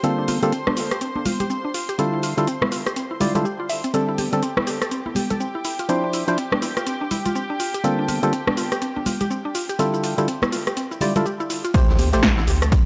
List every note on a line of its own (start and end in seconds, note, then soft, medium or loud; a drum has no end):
0.00 0.39 D3 medium
0.00 0.39 G3 medium
0.00 0.39 A#3 medium
0.00 0.07 C4 medium
0.00 0.39 C4 medium
0.00 0.39 F4 medium
0.00 0.39 A4 medium
0.00 3.95 C5 medium
0.00 3.95 C6 medium
0.00 closed hi-hat medium
0.00 cabasa soft
0.18 0.21 D4 medium
0.28 0.34 F4 medium
0.28 open hi-hat loud
0.28 high conga medium
0.28 cabasa medium
0.42 0.52 D3 loud
0.42 0.52 G3 medium
0.42 0.53 A#3 medium
0.42 0.53 C4 medium
0.42 0.53 F4 medium
0.42 0.45 G4 medium
0.42 0.53 A4 loud
0.42 closed hi-hat soft
0.42 cabasa soft
0.52 0.56 C4 medium
0.52 closed hi-hat medium
0.52 cabasa soft
0.67 0.71 D4 loud
0.67 cross-stick medium
0.67 high conga medium
0.67 low conga medium
0.77 0.86 F4 medium
0.77 open hi-hat loud
0.77 cabasa medium
0.91 0.95 G4 medium
0.91 cross-stick medium
0.91 closed hi-hat soft
0.91 cabasa soft
1.01 1.10 C4 medium
1.01 closed hi-hat medium
1.01 cabasa soft
1.16 1.18 D4 medium
1.16 high conga medium
1.26 1.32 F4 medium
1.26 open hi-hat loud
1.26 high conga medium
1.26 low conga medium
1.26 cabasa medium
1.40 1.44 G4 loud
1.40 closed hi-hat medium
1.40 low conga medium
1.40 cabasa soft
1.50 1.54 C4 medium
1.50 cabasa soft
1.65 1.69 D4 medium
1.74 1.83 F4 medium
1.74 open hi-hat loud
1.74 cabasa medium
1.89 1.93 G4 medium
1.89 closed hi-hat soft
1.89 cabasa soft
1.98 2.34 D3 medium
1.98 2.34 G3 medium
1.98 2.02 C4 medium
1.98 2.34 E4 medium
1.98 2.34 F4 medium
1.98 2.34 A4 medium
1.98 closed hi-hat medium
1.98 cabasa soft
2.13 2.16 E4 medium
2.23 2.29 F4 medium
2.23 open hi-hat loud
2.23 cabasa medium
2.37 2.48 D3 loud
2.37 2.48 G3 medium
2.37 2.48 E4 medium
2.37 2.48 F4 medium
2.37 2.40 G4 medium
2.37 2.48 A4 loud
2.37 closed hi-hat soft
2.37 cabasa soft
2.47 2.51 C4 medium
2.47 closed hi-hat medium
2.47 cabasa soft
2.62 2.66 E4 loud
2.62 cross-stick medium
2.62 high conga medium
2.62 low conga medium
2.72 2.81 F4 medium
2.72 open hi-hat loud
2.72 cabasa medium
2.87 2.91 G4 medium
2.87 cross-stick medium
2.87 closed hi-hat soft
2.87 cabasa soft
2.96 3.05 C4 medium
2.96 closed hi-hat medium
2.96 cabasa soft
3.11 3.13 E4 medium
3.20 3.33 D3 medium
3.20 3.33 G3 medium
3.20 3.33 E4 medium
3.20 3.33 F4 medium
3.20 3.30 G4 medium
3.20 3.33 D5 medium
3.20 open hi-hat loud
3.20 low conga medium
3.20 cabasa medium
3.35 3.45 D3 medium
3.35 3.45 G3 medium
3.35 3.45 E4 medium
3.35 3.45 F4 medium
3.35 3.41 G4 medium
3.35 3.45 A4 loud
3.35 closed hi-hat soft
3.35 low conga medium
3.35 cabasa soft
3.45 3.54 G4 medium
3.45 cabasa soft
3.60 3.64 F4 medium
3.69 3.75 E5 loud
3.69 open hi-hat loud
3.69 cabasa medium
3.84 3.86 C4 medium
3.84 closed hi-hat soft
3.84 cabasa soft
3.93 4.29 D3 medium
3.93 4.29 G3 medium
3.93 3.97 C4 medium
3.93 4.29 C4 medium
3.93 11.75 G4 medium
3.93 4.30 A4 medium
3.93 11.76 G5 medium
3.93 closed hi-hat medium
3.93 cabasa soft
4.08 4.11 E4 medium
4.18 4.24 G4 medium
4.18 open hi-hat medium
4.18 high conga medium
4.18 cabasa medium
4.32 4.43 D3 loud
4.32 4.43 G3 medium
4.32 4.43 C4 medium
4.32 4.35 A4 medium
4.32 4.43 A4 loud
4.32 closed hi-hat soft
4.32 cabasa soft
4.43 4.46 C4 medium
4.43 closed hi-hat medium
4.43 cabasa soft
4.57 4.61 E4 medium
4.57 cross-stick medium
4.57 high conga medium
4.57 low conga medium
4.67 4.76 G4 medium
4.67 open hi-hat loud
4.67 cabasa medium
4.82 4.86 A4 medium
4.82 cross-stick medium
4.82 closed hi-hat soft
4.82 cabasa soft
4.91 5.00 C4 medium
4.91 closed hi-hat medium
4.91 cabasa soft
5.06 5.08 E4 medium
5.06 high conga medium
5.15 5.22 G4 medium
5.15 open hi-hat loud
5.15 high conga medium
5.15 low conga medium
5.15 cabasa medium
5.30 5.34 A4 loud
5.30 closed hi-hat soft
5.30 low conga medium
5.30 cabasa soft
5.40 5.44 C4 medium
5.40 cabasa soft
5.55 5.59 E4 medium
5.65 5.74 E4 medium
5.65 open hi-hat loud
5.65 cabasa medium
5.79 5.83 F4 medium
5.79 closed hi-hat soft
5.79 cabasa soft
5.89 6.24 F3 medium
5.89 5.93 C4 medium
5.89 6.24 D4 medium
5.89 6.25 E4 medium
5.89 6.25 C5 medium
5.89 closed hi-hat medium
5.89 cabasa soft
6.04 6.06 D4 medium
6.13 6.19 E4 medium
6.13 open hi-hat medium
6.13 cabasa medium
6.27 6.38 F3 loud
6.27 6.38 D4 medium
6.27 6.38 E4 medium
6.27 6.30 F4 medium
6.27 6.38 C5 loud
6.27 closed hi-hat soft
6.27 cabasa soft
6.38 6.41 C4 medium
6.38 closed hi-hat medium
6.38 cabasa soft
6.52 6.56 D4 medium
6.52 cross-stick medium
6.52 high conga medium
6.52 low conga medium
6.62 6.71 E4 medium
6.62 open hi-hat loud
6.62 cabasa medium
6.77 6.81 F4 medium
6.77 cross-stick medium
6.77 closed hi-hat soft
6.77 cabasa soft
6.87 6.95 C4 medium
6.87 closed hi-hat medium
6.87 cabasa soft
7.01 7.04 D4 medium
7.11 7.17 E4 medium
7.11 open hi-hat loud
7.11 low conga medium
7.11 cabasa medium
7.26 7.30 F4 loud
7.26 closed hi-hat medium
7.26 low conga medium
7.26 cabasa soft
7.35 7.39 C4 medium
7.35 cabasa soft
7.50 7.54 D4 medium
7.60 7.69 F4 medium
7.60 open hi-hat loud
7.60 cabasa medium
7.74 7.78 G4 medium
7.74 closed hi-hat soft
7.74 cabasa soft
7.84 8.19 D3 medium
7.84 8.19 G3 medium
7.84 8.20 A#3 medium
7.84 7.88 C4 medium
7.84 8.20 C4 medium
7.84 8.20 F4 medium
7.84 8.20 A4 loud
7.84 closed hi-hat medium
7.84 cabasa soft
7.99 8.01 D4 medium
8.08 8.14 F4 medium
8.08 open hi-hat medium
8.08 high conga medium
8.08 cabasa medium
8.23 8.33 D3 loud
8.23 8.33 G3 medium
8.23 8.33 A#3 medium
8.23 8.33 C4 medium
8.23 8.33 F4 medium
8.23 8.25 G4 medium
8.23 8.33 A4 loud
8.23 closed hi-hat soft
8.23 cabasa soft
8.33 8.36 C4 medium
8.33 closed hi-hat medium
8.33 cabasa soft
8.47 8.51 D4 loud
8.47 cross-stick medium
8.47 high conga medium
8.47 low conga medium
8.57 8.66 F4 medium
8.57 open hi-hat loud
8.57 cabasa medium
8.72 8.76 G4 medium
8.72 cross-stick medium
8.72 closed hi-hat medium
8.72 cabasa soft
8.82 8.91 C4 medium
8.82 closed hi-hat medium
8.82 cabasa soft
8.96 8.99 D4 medium
8.96 high conga medium
9.06 9.12 F4 medium
9.06 open hi-hat medium
9.06 high conga medium
9.06 low conga medium
9.06 cabasa medium
9.21 9.25 G4 loud
9.21 closed hi-hat medium
9.21 low conga medium
9.21 cabasa soft
9.30 9.34 C4 medium
9.30 cabasa soft
9.45 9.49 D4 medium
9.55 9.64 F4 medium
9.55 open hi-hat loud
9.55 cabasa medium
9.69 9.73 G4 medium
9.69 closed hi-hat medium
9.69 cabasa soft
9.79 10.14 D3 medium
9.79 10.15 G3 medium
9.79 9.83 C4 medium
9.79 10.15 E4 medium
9.79 10.15 F4 medium
9.79 10.15 A4 medium
9.79 closed hi-hat medium
9.79 cabasa soft
9.94 9.96 E4 medium
9.94 cabasa soft
10.04 10.10 F4 medium
10.04 open hi-hat medium
10.04 cabasa medium
10.18 10.28 D3 loud
10.18 10.28 G3 medium
10.18 10.28 E4 medium
10.18 10.28 F4 medium
10.18 10.21 G4 medium
10.18 10.28 A4 loud
10.18 closed hi-hat soft
10.18 cabasa soft
10.28 10.32 C4 medium
10.28 closed hi-hat medium
10.28 cabasa soft
10.42 10.47 E4 loud
10.42 cross-stick medium
10.42 high conga medium
10.42 low conga medium
10.42 cabasa soft
10.52 10.61 F4 medium
10.52 open hi-hat loud
10.52 cabasa medium
10.67 10.71 G4 medium
10.67 cross-stick medium
10.67 closed hi-hat medium
10.67 cabasa soft
10.77 10.86 C4 medium
10.77 closed hi-hat medium
10.77 cabasa soft
10.91 10.94 E4 medium
10.91 cabasa soft
11.01 11.13 D3 medium
11.01 11.13 G3 medium
11.01 11.14 E4 medium
11.01 11.14 F4 medium
11.01 11.05 G4 medium
11.01 11.14 D5 medium
11.01 open hi-hat loud
11.01 low conga medium
11.01 cabasa medium
11.15 11.26 D3 medium
11.15 11.26 G3 medium
11.15 11.26 E4 medium
11.15 11.22 F4 loud
11.15 11.26 F4 medium
11.15 11.26 A4 loud
11.15 closed hi-hat medium
11.15 low conga medium
11.15 cabasa soft
11.26 11.31 G4 medium
11.26 cabasa soft
11.40 11.44 E4 loud
11.40 cabasa soft
11.50 11.59 E4 medium
11.50 open hi-hat medium
11.50 cabasa medium
11.64 11.67 F4 loud
11.64 closed hi-hat medium
11.64 cabasa soft
11.74 12.15 D2 loud
11.74 12.10 A3 medium
11.74 11.78 C4 medium
11.74 12.10 G4 medium
11.74 12.10 C5 loud
11.74 kick loud
11.74 closed hi-hat medium
11.74 impact medium
11.74 cabasa soft
11.89 11.91 E4 medium
11.89 snare soft
11.99 12.05 G4 medium
11.99 closed hi-hat medium
11.99 open hi-hat loud
11.99 high conga medium
11.99 cabasa medium
12.13 12.43 A1 medium
12.13 12.23 A3 loud
12.13 12.23 G4 medium
12.13 12.16 A4 medium
12.13 12.24 C5 loud
12.13 snare medium
12.13 closed hi-hat medium
12.13 cabasa soft
12.23 12.27 C4 medium
12.23 kick loud
12.23 snare loud
12.23 closed hi-hat medium
12.23 cabasa soft
12.37 12.42 E4 loud
12.37 snare medium
12.47 12.80 D2 loud
12.47 12.56 G4 medium
12.47 closed hi-hat medium
12.47 open hi-hat loud
12.47 cabasa medium
12.62 12.66 A4 medium
12.62 cross-stick medium
12.62 closed hi-hat medium
12.62 cabasa soft
12.72 12.81 C4 medium
12.72 kick loud
12.72 closed hi-hat medium
12.72 cabasa soft